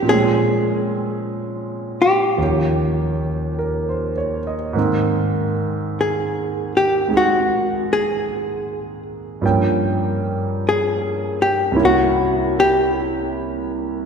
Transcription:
X:1
M:4/4
L:1/16
Q:"Swing" 1/4=51
K:Ab
V:1 name="Hollow-body jazz guitar"
A6 G6 z4 | z4 A2 G2 _G2 A4 z2 | z4 A2 G2 _G2 =G4 z2 |]
V:2 name="Grand piano"
z12 B c d e | z16 | z16 |]
V:3 name="Grand piano"
[B,,F,A,CD]8 [E,,E,F,DG]8 | [A,,E,B,CB]8 [A,CEA]8 | [G,,F,B,Dg]8 [C,,C,B,D=E]8 |]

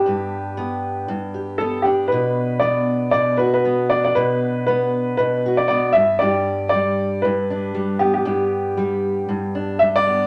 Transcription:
X:1
M:4/4
L:1/16
Q:"Swing 16ths" 1/4=117
K:G
V:1 name="Upright piano"
G8- G3 z A2 G2 | B4 d4 d2 B B3 d d | B4 B4 B3 d d2 e2 | d4 d4 B6 G G- |
G8- G3 z e d3 |]
V:2 name="Steel-string acoustic guitar"
[G,,B,DGB]4 B,4 G,,2 G2 B,2 D2 | [B,,B]4 B,4 B,,2 F2 B,2 D2 | [B,,B]4 B,4 B,,2 F2 B,2 G,,2 | [G,,G]4 G,4 G,,2 D2 G,2 B,2 |
[G,,G]4 G,4 G,,2 D2 G,2 B,2 |]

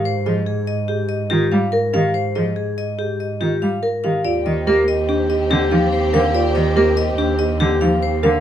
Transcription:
X:1
M:5/4
L:1/8
Q:1/4=143
K:Ab
V:1 name="Vibraphone"
c e A e G e G f B f | c e A e G e G f B f | [K:Eb] d e B e G e G f c f | d e B e G e G f c f |]
V:2 name="French horn"
z8 z2 | z8 z2 | [K:Eb] G8- G2- | G8- G z |]
V:3 name="Marimba"
z A z2 A z F z B G | z A z2 A z F z B G | [K:Eb] F z G z D G z E z B | F z G z D G z E z B |]
V:4 name="Violin section"
z8 z2 | z8 z2 | [K:Eb] [CG]8- [CG]2- | [CG]8- [CG] z |]
V:5 name="Cello" clef=bass
z F, z4 E, G, z E, | z F, z4 E, G, z E, | [K:Eb] z E, B, z3 D, F, z D, | z E, B, z3 D, F, z D, |]
V:6 name="Double bass" clef=bass
A,,8- A,,2- | A,,8- A,,2 | [K:Eb] E,,8- E,,2- | E,,8- E,,2 |]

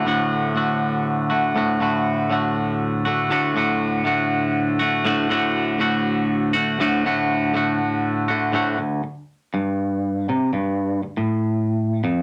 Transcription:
X:1
M:7/8
L:1/16
Q:1/4=120
K:D
V:1 name="Clean electric guitar" clef=bass
[D,,A,,D,A,F]4 [A,,D,A,F]6 [D,A,F]2 [D,,A,,D,A,F]2 | [D,,A,,D,A,F]4 [A,,D,A,F]6 [D,A,F]2 [D,,A,,D,A,F]2 | [D,,A,,D,A,F]4 [A,,D,A,F]6 [D,A,F]2 [D,,A,,D,A,F]2 | [D,,A,,D,A,F]4 [A,,D,A,F]6 [D,A,F]2 [D,,A,,D,A,F]2 |
[D,,A,,D,A,F]4 [A,,D,A,F]6 [D,A,F]2 [D,,A,,D,A,F]2 | D,,2 z4 G,,6 =C,2 | G,,4 D,, A,,6- A,, =F,,2 |]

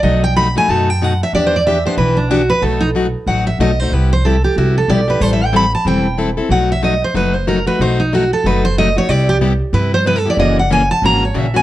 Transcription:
X:1
M:4/4
L:1/8
Q:"Swing" 1/4=186
K:Bphr
V:1 name="Steel-string acoustic guitar"
^d g b ^g a =g f e | (3d c d e c B D F B | A ^D z2 f e ^d c | B c A G F A d B |
(3c e g b a g2 z2 | f e ^d c B c ^A B | c ^D F A B c ^d ^c | d G z2 B c (3B A d |
^d f ^g a ^a ^c e g |]
V:2 name="Steel-string acoustic guitar"
[B,,F,A,^DF] z [B,,F,A,DF] [A,DF] [B,,F,A,DF] z [B,,F,A,DF] z | [E,B,DG] z [E,B,DG] [B,DG] [E,B,DG] z [E,B,DG] z | [B,,F,A,^DF] z [B,,F,A,DF] z [B,,F,A,DF] z [B,,F,A,DF] [A,DF] | [C,G,B,EG] z [C,G,B,EG] z [C,G,B,EG] z [C,G,B,EG] [B,EG] |
[E,G,CEA] z [E,G,CEA] z [E,G,CEA] z [E,G,CEA] [CEA] | [B,,F,A,^DF] z [B,,F,A,DF] z [B,,F,A,DF] z [B,,F,A,DF] [A,DF] | [B,,F,A,^DF] z [B,,F,A,DF] z [B,,F,A,DF] z [B,,F,A,DF] [A,DF] | [C,G,B,EG] z [C,G,B,EG] z [C,G,B,EG] z [C,G,B,EG] [B,EG] |
[^C,E,^A,^CF] z [C,E,A,CF] z [C,E,A,CF] z [C,E,A,CF] [A,CF] |]
V:3 name="Upright bass" clef=bass
B,,,4 F,,4 | E,,4 B,,,4 | B,,,4 A,,,2 B,,,2 | C,,4 C,,2 B,,,2 |
A,,,4 E,,,4 | B,,,4 F,,,4 | B,,,4 F,,,4 | C,,4 G,,4 |
F,,,4 ^G,,,2 ^A,,,2 |]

